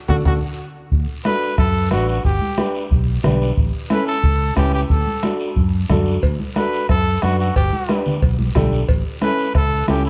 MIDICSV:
0, 0, Header, 1, 6, 480
1, 0, Start_track
1, 0, Key_signature, 2, "major"
1, 0, Tempo, 331858
1, 1328, Time_signature, 4, 2, 24, 8
1, 14603, End_track
2, 0, Start_track
2, 0, Title_t, "Trumpet"
2, 0, Program_c, 0, 56
2, 129, Note_on_c, 0, 66, 84
2, 243, Note_off_c, 0, 66, 0
2, 374, Note_on_c, 0, 66, 82
2, 487, Note_off_c, 0, 66, 0
2, 1803, Note_on_c, 0, 71, 99
2, 2252, Note_off_c, 0, 71, 0
2, 2290, Note_on_c, 0, 69, 93
2, 2737, Note_off_c, 0, 69, 0
2, 2774, Note_on_c, 0, 66, 81
2, 2995, Note_off_c, 0, 66, 0
2, 3016, Note_on_c, 0, 66, 79
2, 3236, Note_off_c, 0, 66, 0
2, 3250, Note_on_c, 0, 67, 86
2, 3920, Note_off_c, 0, 67, 0
2, 5657, Note_on_c, 0, 71, 97
2, 5877, Note_off_c, 0, 71, 0
2, 5890, Note_on_c, 0, 69, 100
2, 6560, Note_off_c, 0, 69, 0
2, 6610, Note_on_c, 0, 67, 89
2, 6834, Note_off_c, 0, 67, 0
2, 6857, Note_on_c, 0, 67, 81
2, 6963, Note_off_c, 0, 67, 0
2, 7092, Note_on_c, 0, 69, 88
2, 7761, Note_off_c, 0, 69, 0
2, 9486, Note_on_c, 0, 71, 88
2, 9935, Note_off_c, 0, 71, 0
2, 9973, Note_on_c, 0, 69, 99
2, 10449, Note_on_c, 0, 66, 87
2, 10471, Note_off_c, 0, 69, 0
2, 10678, Note_off_c, 0, 66, 0
2, 10687, Note_on_c, 0, 66, 75
2, 10912, Note_off_c, 0, 66, 0
2, 10938, Note_on_c, 0, 67, 79
2, 11604, Note_off_c, 0, 67, 0
2, 13342, Note_on_c, 0, 71, 99
2, 13783, Note_off_c, 0, 71, 0
2, 13817, Note_on_c, 0, 69, 100
2, 14260, Note_off_c, 0, 69, 0
2, 14297, Note_on_c, 0, 67, 88
2, 14517, Note_off_c, 0, 67, 0
2, 14537, Note_on_c, 0, 64, 90
2, 14603, Note_off_c, 0, 64, 0
2, 14603, End_track
3, 0, Start_track
3, 0, Title_t, "Upright piano"
3, 0, Program_c, 1, 0
3, 125, Note_on_c, 1, 66, 88
3, 126, Note_on_c, 1, 62, 90
3, 126, Note_on_c, 1, 69, 95
3, 280, Note_off_c, 1, 62, 0
3, 280, Note_off_c, 1, 66, 0
3, 280, Note_off_c, 1, 69, 0
3, 366, Note_on_c, 1, 66, 82
3, 368, Note_on_c, 1, 69, 84
3, 369, Note_on_c, 1, 62, 84
3, 520, Note_off_c, 1, 66, 0
3, 521, Note_off_c, 1, 69, 0
3, 522, Note_off_c, 1, 62, 0
3, 1809, Note_on_c, 1, 62, 68
3, 1812, Note_on_c, 1, 66, 61
3, 1819, Note_on_c, 1, 69, 68
3, 2145, Note_off_c, 1, 62, 0
3, 2147, Note_off_c, 1, 66, 0
3, 2150, Note_off_c, 1, 69, 0
3, 2757, Note_on_c, 1, 62, 69
3, 2761, Note_on_c, 1, 66, 62
3, 2766, Note_on_c, 1, 71, 73
3, 3100, Note_off_c, 1, 62, 0
3, 3102, Note_off_c, 1, 66, 0
3, 3104, Note_off_c, 1, 71, 0
3, 3724, Note_on_c, 1, 62, 68
3, 3730, Note_on_c, 1, 67, 64
3, 3739, Note_on_c, 1, 71, 78
3, 4064, Note_off_c, 1, 62, 0
3, 4066, Note_off_c, 1, 67, 0
3, 4071, Note_off_c, 1, 71, 0
3, 4679, Note_on_c, 1, 62, 81
3, 4685, Note_on_c, 1, 67, 75
3, 4692, Note_on_c, 1, 71, 91
3, 5021, Note_off_c, 1, 62, 0
3, 5024, Note_off_c, 1, 67, 0
3, 5027, Note_off_c, 1, 71, 0
3, 5642, Note_on_c, 1, 61, 68
3, 5649, Note_on_c, 1, 64, 66
3, 5654, Note_on_c, 1, 69, 75
3, 5983, Note_off_c, 1, 61, 0
3, 5986, Note_off_c, 1, 64, 0
3, 5989, Note_off_c, 1, 69, 0
3, 6594, Note_on_c, 1, 61, 69
3, 6602, Note_on_c, 1, 64, 62
3, 6609, Note_on_c, 1, 71, 70
3, 6939, Note_off_c, 1, 61, 0
3, 6943, Note_off_c, 1, 64, 0
3, 6946, Note_off_c, 1, 71, 0
3, 7562, Note_on_c, 1, 62, 67
3, 7566, Note_on_c, 1, 66, 61
3, 7570, Note_on_c, 1, 69, 69
3, 7903, Note_off_c, 1, 62, 0
3, 7905, Note_off_c, 1, 66, 0
3, 7907, Note_off_c, 1, 69, 0
3, 8523, Note_on_c, 1, 62, 74
3, 8531, Note_on_c, 1, 66, 77
3, 8534, Note_on_c, 1, 69, 87
3, 8863, Note_off_c, 1, 62, 0
3, 8867, Note_off_c, 1, 66, 0
3, 8868, Note_off_c, 1, 69, 0
3, 9484, Note_on_c, 1, 62, 69
3, 9490, Note_on_c, 1, 66, 64
3, 9496, Note_on_c, 1, 69, 76
3, 9824, Note_off_c, 1, 62, 0
3, 9826, Note_off_c, 1, 66, 0
3, 9830, Note_off_c, 1, 69, 0
3, 10448, Note_on_c, 1, 62, 66
3, 10456, Note_on_c, 1, 66, 60
3, 10460, Note_on_c, 1, 71, 74
3, 10786, Note_off_c, 1, 62, 0
3, 10790, Note_off_c, 1, 66, 0
3, 10791, Note_off_c, 1, 71, 0
3, 11412, Note_on_c, 1, 62, 70
3, 11417, Note_on_c, 1, 67, 60
3, 11424, Note_on_c, 1, 71, 78
3, 11747, Note_off_c, 1, 62, 0
3, 11750, Note_off_c, 1, 67, 0
3, 11753, Note_off_c, 1, 71, 0
3, 12367, Note_on_c, 1, 62, 78
3, 12373, Note_on_c, 1, 67, 79
3, 12377, Note_on_c, 1, 69, 89
3, 12705, Note_off_c, 1, 62, 0
3, 12708, Note_off_c, 1, 67, 0
3, 12710, Note_off_c, 1, 69, 0
3, 13326, Note_on_c, 1, 61, 68
3, 13334, Note_on_c, 1, 64, 66
3, 13338, Note_on_c, 1, 69, 78
3, 13664, Note_off_c, 1, 61, 0
3, 13668, Note_off_c, 1, 64, 0
3, 13670, Note_off_c, 1, 69, 0
3, 14288, Note_on_c, 1, 61, 69
3, 14293, Note_on_c, 1, 64, 62
3, 14299, Note_on_c, 1, 69, 79
3, 14603, Note_off_c, 1, 61, 0
3, 14603, Note_off_c, 1, 64, 0
3, 14603, Note_off_c, 1, 69, 0
3, 14603, End_track
4, 0, Start_track
4, 0, Title_t, "Fingered electric bass"
4, 0, Program_c, 2, 33
4, 127, Note_on_c, 2, 38, 79
4, 305, Note_off_c, 2, 38, 0
4, 369, Note_on_c, 2, 38, 90
4, 547, Note_off_c, 2, 38, 0
4, 1329, Note_on_c, 2, 38, 93
4, 1521, Note_off_c, 2, 38, 0
4, 2290, Note_on_c, 2, 42, 90
4, 2766, Note_on_c, 2, 33, 89
4, 2787, Note_off_c, 2, 42, 0
4, 3152, Note_off_c, 2, 33, 0
4, 3250, Note_on_c, 2, 31, 93
4, 3442, Note_off_c, 2, 31, 0
4, 4208, Note_on_c, 2, 35, 88
4, 4593, Note_off_c, 2, 35, 0
4, 4686, Note_on_c, 2, 35, 93
4, 5072, Note_off_c, 2, 35, 0
4, 5172, Note_on_c, 2, 33, 90
4, 5363, Note_off_c, 2, 33, 0
4, 6128, Note_on_c, 2, 37, 97
4, 6513, Note_off_c, 2, 37, 0
4, 6607, Note_on_c, 2, 37, 91
4, 6992, Note_off_c, 2, 37, 0
4, 7089, Note_on_c, 2, 38, 97
4, 7282, Note_off_c, 2, 38, 0
4, 8049, Note_on_c, 2, 42, 90
4, 8434, Note_off_c, 2, 42, 0
4, 8530, Note_on_c, 2, 42, 91
4, 8914, Note_off_c, 2, 42, 0
4, 9010, Note_on_c, 2, 38, 92
4, 9203, Note_off_c, 2, 38, 0
4, 9973, Note_on_c, 2, 42, 91
4, 10356, Note_off_c, 2, 42, 0
4, 10461, Note_on_c, 2, 42, 90
4, 10841, Note_off_c, 2, 42, 0
4, 10935, Note_on_c, 2, 31, 92
4, 11125, Note_off_c, 2, 31, 0
4, 11894, Note_on_c, 2, 35, 94
4, 12277, Note_off_c, 2, 35, 0
4, 12376, Note_on_c, 2, 35, 99
4, 12758, Note_off_c, 2, 35, 0
4, 12857, Note_on_c, 2, 33, 90
4, 13046, Note_off_c, 2, 33, 0
4, 13814, Note_on_c, 2, 37, 101
4, 14196, Note_off_c, 2, 37, 0
4, 14293, Note_on_c, 2, 37, 96
4, 14603, Note_off_c, 2, 37, 0
4, 14603, End_track
5, 0, Start_track
5, 0, Title_t, "Two-headed folk drums"
5, 127, Note_on_c, 9, 36, 86
5, 272, Note_off_c, 9, 36, 0
5, 368, Note_on_c, 9, 36, 96
5, 512, Note_off_c, 9, 36, 0
5, 1326, Note_on_c, 9, 36, 78
5, 1471, Note_off_c, 9, 36, 0
5, 1808, Note_on_c, 9, 37, 82
5, 1953, Note_off_c, 9, 37, 0
5, 2286, Note_on_c, 9, 37, 70
5, 2287, Note_on_c, 9, 36, 88
5, 2430, Note_off_c, 9, 37, 0
5, 2432, Note_off_c, 9, 36, 0
5, 2763, Note_on_c, 9, 37, 83
5, 2907, Note_off_c, 9, 37, 0
5, 3249, Note_on_c, 9, 36, 78
5, 3394, Note_off_c, 9, 36, 0
5, 3728, Note_on_c, 9, 37, 79
5, 3873, Note_off_c, 9, 37, 0
5, 4210, Note_on_c, 9, 36, 88
5, 4355, Note_off_c, 9, 36, 0
5, 4690, Note_on_c, 9, 37, 82
5, 4835, Note_off_c, 9, 37, 0
5, 5169, Note_on_c, 9, 36, 80
5, 5313, Note_off_c, 9, 36, 0
5, 5643, Note_on_c, 9, 37, 82
5, 5788, Note_off_c, 9, 37, 0
5, 6126, Note_on_c, 9, 36, 89
5, 6270, Note_off_c, 9, 36, 0
5, 6604, Note_on_c, 9, 37, 86
5, 6606, Note_on_c, 9, 36, 69
5, 6749, Note_off_c, 9, 37, 0
5, 6751, Note_off_c, 9, 36, 0
5, 7087, Note_on_c, 9, 36, 78
5, 7231, Note_off_c, 9, 36, 0
5, 7563, Note_on_c, 9, 37, 79
5, 7707, Note_off_c, 9, 37, 0
5, 8049, Note_on_c, 9, 36, 85
5, 8193, Note_off_c, 9, 36, 0
5, 8527, Note_on_c, 9, 37, 83
5, 8529, Note_on_c, 9, 36, 71
5, 8672, Note_off_c, 9, 37, 0
5, 8673, Note_off_c, 9, 36, 0
5, 9009, Note_on_c, 9, 36, 75
5, 9154, Note_off_c, 9, 36, 0
5, 9490, Note_on_c, 9, 37, 76
5, 9635, Note_off_c, 9, 37, 0
5, 9966, Note_on_c, 9, 37, 75
5, 9971, Note_on_c, 9, 36, 91
5, 10111, Note_off_c, 9, 37, 0
5, 10116, Note_off_c, 9, 36, 0
5, 10445, Note_on_c, 9, 37, 83
5, 10590, Note_off_c, 9, 37, 0
5, 10934, Note_on_c, 9, 36, 82
5, 11079, Note_off_c, 9, 36, 0
5, 11408, Note_on_c, 9, 37, 80
5, 11553, Note_off_c, 9, 37, 0
5, 11893, Note_on_c, 9, 36, 85
5, 12038, Note_off_c, 9, 36, 0
5, 12369, Note_on_c, 9, 37, 79
5, 12373, Note_on_c, 9, 36, 72
5, 12514, Note_off_c, 9, 37, 0
5, 12518, Note_off_c, 9, 36, 0
5, 12854, Note_on_c, 9, 36, 82
5, 12999, Note_off_c, 9, 36, 0
5, 13331, Note_on_c, 9, 37, 78
5, 13476, Note_off_c, 9, 37, 0
5, 13810, Note_on_c, 9, 37, 71
5, 13813, Note_on_c, 9, 36, 88
5, 13955, Note_off_c, 9, 37, 0
5, 13957, Note_off_c, 9, 36, 0
5, 14291, Note_on_c, 9, 37, 83
5, 14436, Note_off_c, 9, 37, 0
5, 14603, End_track
6, 0, Start_track
6, 0, Title_t, "Drums"
6, 123, Note_on_c, 9, 65, 84
6, 129, Note_on_c, 9, 74, 83
6, 130, Note_on_c, 9, 64, 87
6, 268, Note_off_c, 9, 65, 0
6, 274, Note_off_c, 9, 74, 0
6, 275, Note_off_c, 9, 64, 0
6, 366, Note_on_c, 9, 74, 86
6, 367, Note_on_c, 9, 64, 90
6, 367, Note_on_c, 9, 65, 85
6, 511, Note_off_c, 9, 65, 0
6, 511, Note_off_c, 9, 74, 0
6, 512, Note_off_c, 9, 64, 0
6, 1332, Note_on_c, 9, 63, 31
6, 1332, Note_on_c, 9, 74, 64
6, 1476, Note_off_c, 9, 74, 0
6, 1477, Note_off_c, 9, 63, 0
6, 1810, Note_on_c, 9, 63, 90
6, 1812, Note_on_c, 9, 73, 68
6, 1955, Note_off_c, 9, 63, 0
6, 1956, Note_off_c, 9, 73, 0
6, 2057, Note_on_c, 9, 73, 65
6, 2202, Note_off_c, 9, 73, 0
6, 2292, Note_on_c, 9, 74, 69
6, 2294, Note_on_c, 9, 63, 32
6, 2436, Note_off_c, 9, 74, 0
6, 2439, Note_off_c, 9, 63, 0
6, 2768, Note_on_c, 9, 63, 76
6, 2771, Note_on_c, 9, 73, 73
6, 2913, Note_off_c, 9, 63, 0
6, 2916, Note_off_c, 9, 73, 0
6, 3008, Note_on_c, 9, 73, 74
6, 3153, Note_off_c, 9, 73, 0
6, 3246, Note_on_c, 9, 74, 67
6, 3254, Note_on_c, 9, 63, 32
6, 3391, Note_off_c, 9, 74, 0
6, 3399, Note_off_c, 9, 63, 0
6, 3492, Note_on_c, 9, 63, 64
6, 3636, Note_off_c, 9, 63, 0
6, 3727, Note_on_c, 9, 63, 93
6, 3728, Note_on_c, 9, 73, 70
6, 3871, Note_off_c, 9, 63, 0
6, 3873, Note_off_c, 9, 73, 0
6, 3969, Note_on_c, 9, 73, 65
6, 4113, Note_off_c, 9, 73, 0
6, 4211, Note_on_c, 9, 74, 66
6, 4218, Note_on_c, 9, 63, 34
6, 4356, Note_off_c, 9, 74, 0
6, 4363, Note_off_c, 9, 63, 0
6, 4687, Note_on_c, 9, 63, 77
6, 4687, Note_on_c, 9, 64, 82
6, 4693, Note_on_c, 9, 73, 68
6, 4832, Note_off_c, 9, 63, 0
6, 4832, Note_off_c, 9, 64, 0
6, 4837, Note_off_c, 9, 73, 0
6, 4933, Note_on_c, 9, 73, 70
6, 5078, Note_off_c, 9, 73, 0
6, 5164, Note_on_c, 9, 63, 33
6, 5172, Note_on_c, 9, 74, 70
6, 5309, Note_off_c, 9, 63, 0
6, 5316, Note_off_c, 9, 74, 0
6, 5647, Note_on_c, 9, 63, 91
6, 5650, Note_on_c, 9, 73, 63
6, 5792, Note_off_c, 9, 63, 0
6, 5795, Note_off_c, 9, 73, 0
6, 5883, Note_on_c, 9, 73, 66
6, 6028, Note_off_c, 9, 73, 0
6, 6127, Note_on_c, 9, 74, 61
6, 6130, Note_on_c, 9, 63, 34
6, 6272, Note_off_c, 9, 74, 0
6, 6275, Note_off_c, 9, 63, 0
6, 6607, Note_on_c, 9, 63, 74
6, 6609, Note_on_c, 9, 73, 71
6, 6751, Note_off_c, 9, 63, 0
6, 6753, Note_off_c, 9, 73, 0
6, 6847, Note_on_c, 9, 73, 67
6, 6992, Note_off_c, 9, 73, 0
6, 7079, Note_on_c, 9, 74, 68
6, 7091, Note_on_c, 9, 63, 35
6, 7223, Note_off_c, 9, 74, 0
6, 7236, Note_off_c, 9, 63, 0
6, 7329, Note_on_c, 9, 63, 65
6, 7474, Note_off_c, 9, 63, 0
6, 7565, Note_on_c, 9, 73, 69
6, 7567, Note_on_c, 9, 63, 98
6, 7709, Note_off_c, 9, 73, 0
6, 7712, Note_off_c, 9, 63, 0
6, 7806, Note_on_c, 9, 73, 70
6, 7951, Note_off_c, 9, 73, 0
6, 8047, Note_on_c, 9, 74, 66
6, 8049, Note_on_c, 9, 63, 33
6, 8192, Note_off_c, 9, 74, 0
6, 8194, Note_off_c, 9, 63, 0
6, 8526, Note_on_c, 9, 63, 79
6, 8526, Note_on_c, 9, 64, 77
6, 8531, Note_on_c, 9, 73, 71
6, 8671, Note_off_c, 9, 63, 0
6, 8671, Note_off_c, 9, 64, 0
6, 8675, Note_off_c, 9, 73, 0
6, 8764, Note_on_c, 9, 73, 75
6, 8909, Note_off_c, 9, 73, 0
6, 8998, Note_on_c, 9, 74, 64
6, 9010, Note_on_c, 9, 56, 107
6, 9015, Note_on_c, 9, 63, 33
6, 9143, Note_off_c, 9, 74, 0
6, 9155, Note_off_c, 9, 56, 0
6, 9160, Note_off_c, 9, 63, 0
6, 9249, Note_on_c, 9, 63, 64
6, 9394, Note_off_c, 9, 63, 0
6, 9484, Note_on_c, 9, 73, 67
6, 9490, Note_on_c, 9, 63, 91
6, 9629, Note_off_c, 9, 73, 0
6, 9634, Note_off_c, 9, 63, 0
6, 9725, Note_on_c, 9, 73, 69
6, 9870, Note_off_c, 9, 73, 0
6, 9969, Note_on_c, 9, 74, 71
6, 9975, Note_on_c, 9, 56, 86
6, 9975, Note_on_c, 9, 63, 32
6, 10113, Note_off_c, 9, 74, 0
6, 10119, Note_off_c, 9, 56, 0
6, 10119, Note_off_c, 9, 63, 0
6, 10451, Note_on_c, 9, 73, 69
6, 10455, Note_on_c, 9, 63, 78
6, 10596, Note_off_c, 9, 73, 0
6, 10600, Note_off_c, 9, 63, 0
6, 10695, Note_on_c, 9, 73, 73
6, 10840, Note_off_c, 9, 73, 0
6, 10934, Note_on_c, 9, 63, 32
6, 10936, Note_on_c, 9, 74, 65
6, 10938, Note_on_c, 9, 56, 105
6, 11079, Note_off_c, 9, 63, 0
6, 11080, Note_off_c, 9, 74, 0
6, 11082, Note_off_c, 9, 56, 0
6, 11175, Note_on_c, 9, 63, 65
6, 11319, Note_off_c, 9, 63, 0
6, 11417, Note_on_c, 9, 63, 92
6, 11417, Note_on_c, 9, 73, 67
6, 11561, Note_off_c, 9, 63, 0
6, 11562, Note_off_c, 9, 73, 0
6, 11656, Note_on_c, 9, 73, 67
6, 11662, Note_on_c, 9, 64, 69
6, 11800, Note_off_c, 9, 73, 0
6, 11807, Note_off_c, 9, 64, 0
6, 11895, Note_on_c, 9, 74, 67
6, 11896, Note_on_c, 9, 56, 88
6, 11904, Note_on_c, 9, 63, 32
6, 12040, Note_off_c, 9, 74, 0
6, 12041, Note_off_c, 9, 56, 0
6, 12049, Note_off_c, 9, 63, 0
6, 12134, Note_on_c, 9, 63, 72
6, 12279, Note_off_c, 9, 63, 0
6, 12373, Note_on_c, 9, 63, 79
6, 12373, Note_on_c, 9, 64, 79
6, 12377, Note_on_c, 9, 66, 73
6, 12377, Note_on_c, 9, 73, 75
6, 12517, Note_off_c, 9, 63, 0
6, 12517, Note_off_c, 9, 64, 0
6, 12521, Note_off_c, 9, 66, 0
6, 12521, Note_off_c, 9, 73, 0
6, 12615, Note_on_c, 9, 73, 76
6, 12760, Note_off_c, 9, 73, 0
6, 12852, Note_on_c, 9, 56, 99
6, 12855, Note_on_c, 9, 74, 67
6, 12856, Note_on_c, 9, 63, 32
6, 12997, Note_off_c, 9, 56, 0
6, 13000, Note_off_c, 9, 74, 0
6, 13001, Note_off_c, 9, 63, 0
6, 13332, Note_on_c, 9, 63, 95
6, 13332, Note_on_c, 9, 73, 71
6, 13476, Note_off_c, 9, 73, 0
6, 13477, Note_off_c, 9, 63, 0
6, 13573, Note_on_c, 9, 73, 68
6, 13718, Note_off_c, 9, 73, 0
6, 13811, Note_on_c, 9, 56, 87
6, 13815, Note_on_c, 9, 74, 66
6, 13816, Note_on_c, 9, 63, 33
6, 13955, Note_off_c, 9, 56, 0
6, 13959, Note_off_c, 9, 74, 0
6, 13961, Note_off_c, 9, 63, 0
6, 14288, Note_on_c, 9, 63, 80
6, 14290, Note_on_c, 9, 66, 69
6, 14295, Note_on_c, 9, 73, 67
6, 14433, Note_off_c, 9, 63, 0
6, 14435, Note_off_c, 9, 66, 0
6, 14440, Note_off_c, 9, 73, 0
6, 14537, Note_on_c, 9, 73, 71
6, 14603, Note_off_c, 9, 73, 0
6, 14603, End_track
0, 0, End_of_file